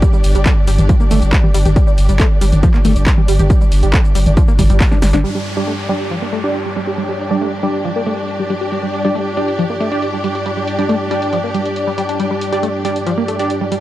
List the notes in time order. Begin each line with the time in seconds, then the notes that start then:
Already playing: G2 G3 D4 G4 D5
0.02 G3, kick, closed hi-hat, shaker
0.13 G3, shaker
0.24 G1, open hi-hat, shaker
0.35 G1 G3, closed hi-hat, shaker
0.46 A3, kick, clap, closed hi-hat, shaker
0.67 G1 G3, open hi-hat, shaker
0.79 G1, closed hi-hat, mid tom, shaker
0.89 F3, kick, closed hi-hat, shaker
1.00 A#3, shaker
1.11 G1 A3, open hi-hat, mid tom, shaker
1.22 G1, closed hi-hat, shaker
1.33 kick, clap, closed hi-hat, shaker
1.44 G3, mid tom
1.54 G1 G3, open hi-hat, shaker
1.65 G1 G4, closed hi-hat, mid tom, shaker
1.76 G3, kick, closed hi-hat, shaker
1.87 G3, shaker
1.98 G1, open hi-hat, shaker
2.09 G1 G3, closed hi-hat, shaker
2.20 A3, kick, clap, closed hi-hat, shaker
2.41 G1 G3, open hi-hat, shaker
2.52 G1, closed hi-hat, mid tom, shaker
2.63 F3, kick, closed hi-hat, shaker
2.74 A#3, clap, shaker
2.85 G1 A3, open hi-hat, mid tom, shaker
2.96 G1, closed hi-hat, shaker
3.07 kick, clap, closed hi-hat, shaker
3.18 G3, mid tom
3.28 G1 G3, open hi-hat, shaker
3.39 G1 G4, closed hi-hat, mid tom, shaker
3.50 G3, kick, closed hi-hat, shaker
3.61 G3, shaker
3.72 G1, open hi-hat, shaker
3.83 G1 G3, closed hi-hat, shaker
3.93 A3, kick, clap, closed hi-hat, shaker
4.05 shaker
4.15 G1 G3, open hi-hat, shaker
4.26 G1, closed hi-hat, mid tom, shaker
4.37 F3, kick, closed hi-hat, shaker
4.48 A#3, shaker
4.59 G1 G3, kick, open hi-hat, mid tom, shaker
4.70 G1 G3, closed hi-hat, shaker
4.80 A#3, kick, clap, open hi-hat, shaker
4.92 D4, snare, mid tom, shaker
5.02 G1 G3, snare, open hi-hat, shaker
5.13 G1 D4, snare, closed hi-hat, mid tom, shaker
5.24 G2 G3 D4, downlifter
5.35 G3
5.46 closed hi-hat
5.50 G4 D5
5.57 G3 D4 G4 D5
5.67 A3
5.89 G3 D4 G4 D5
6.11 F3
6.22 A#3
6.33 A3, closed hi-hat
6.44 D4 G4 D5, closed hi-hat
6.54 closed hi-hat
6.66 G3
6.76 G3, closed hi-hat
6.87 G4, closed hi-hat
6.98 G3, closed hi-hat
7.09 G3
7.20 closed hi-hat
7.31 G3 D4 G4 D5, closed hi-hat
7.41 A3, closed hi-hat
7.63 G3 D4 G4 D5, closed hi-hat
7.74 closed hi-hat
7.85 F3, closed hi-hat
7.96 A#3
8.06 A3, closed hi-hat
8.18 closed hi-hat
8.28 closed hi-hat
8.39 G3
8.50 G3, closed hi-hat
8.61 G4, closed hi-hat
8.72 G3, closed hi-hat
8.83 G3
8.93 closed hi-hat
9.05 G3 D4 G4 D5, closed hi-hat
9.15 A3, closed hi-hat
9.37 G3 D4 G4 D5, closed hi-hat
9.48 closed hi-hat
9.59 F3, closed hi-hat
9.70 A#3
9.80 A3, closed hi-hat
9.92 D4 G4 D5, closed hi-hat
10.02 closed hi-hat
10.13 G3
10.24 G3, closed hi-hat
10.35 G4, closed hi-hat
10.46 G3, closed hi-hat
10.57 G3
10.67 closed hi-hat
10.79 G3 D4 G4 D5, closed hi-hat
10.89 A3, closed hi-hat
11.11 G3 D4 G4 D5, closed hi-hat
11.22 closed hi-hat
11.33 F3, closed hi-hat
11.44 A#3
11.54 G3, closed hi-hat
11.66 closed hi-hat
11.76 closed hi-hat
11.87 G3
11.98 G3, closed hi-hat
12.09 D4, closed hi-hat
12.20 G3, closed hi-hat
12.31 G3
12.41 closed hi-hat
12.52 G3 D4 G4 D5, closed hi-hat
12.63 A3, closed hi-hat
12.85 G3 D4 G4 D5, closed hi-hat
12.96 closed hi-hat
13.07 F3, closed hi-hat
13.18 A#3
13.28 A3, closed hi-hat
13.39 D4 G4 D5, closed hi-hat
13.50 closed hi-hat
13.61 G3
13.72 G3, closed hi-hat